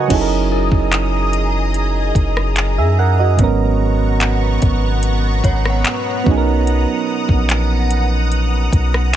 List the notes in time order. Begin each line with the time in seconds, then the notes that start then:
Already playing: C#3 F#3 B3 D#4 F#4 A#4 B4 C#5 D#5 F#5 G#5 A#5 C#6
0.08 F#1 F#3 C#4 D#4 G#4 D#5 A#5 D#6, kick, closed hi-hat, crash
0.12 E4 G#4 A4
0.21 A#4
0.52 A#4
0.72 F#1, kick
0.92 clap, closed hi-hat
1.33 closed hi-hat
1.74 closed hi-hat
2.15 F#1, kick, closed hi-hat
2.37 cross-stick
2.56 clap, closed hi-hat
2.77 F#2 G#4 E5
2.99 A#4 F#5
3.19 F#4 D#5
3.37 G#1 G#2 F#3 B3 F#5 C#6, kick, closed hi-hat
3.42 C#4 A#4
4.21 clap, closed hi-hat
4.62 G#1, kick, closed hi-hat
5.03 closed hi-hat
5.44 G#1 C#5, kick, closed hi-hat
5.65 cross-stick
5.70 F#5
5.85 clap, closed hi-hat
6.24 B1 F#3 B3 C#4 D#6, kick
6.29 D#4 G#4
6.38 A#4
6.67 closed hi-hat
7.29 A#1, kick
7.50 clap, closed hi-hat
7.91 closed hi-hat
8.32 closed hi-hat
8.73 B1, kick, closed hi-hat
8.94 cross-stick